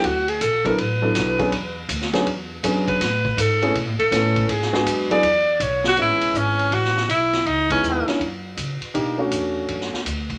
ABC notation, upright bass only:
X:1
M:4/4
L:1/8
Q:"Swing" 1/4=162
K:Emix
V:1 name="Upright bass" clef=bass
D,,2 ^A,,,2 =A,,,2 B,,,2 | E,,2 D,,2 E,,2 F,,2 | A,,2 G,,2 (3B,, A,, G,, A,,2 | G,,2 F,,2 E,,2 B,,,2 |
[K:A] (3A,,, G,,, E,,, G,,,2 A,,,2 B,,,2 | C,,2 ^D,, z F,,2 C, z | B,,2 E,,2 F,, z D,,2 |]